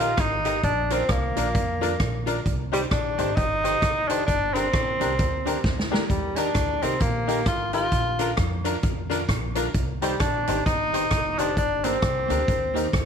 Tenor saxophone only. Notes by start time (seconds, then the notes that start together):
Already playing: F4
0.20 D#4
0.64 D4
0.93 C4
1.11 A#3
2.73 G3
2.91 D4
3.36 D#4
4.08 D4
4.26 D4
4.54 C4
6.10 G3
6.37 D4
6.83 C4
7.01 A#3
7.47 F4
7.74 F4
10.02 G3
10.21 D4
10.66 D#4
11.39 D4
11.58 D4
11.85 C4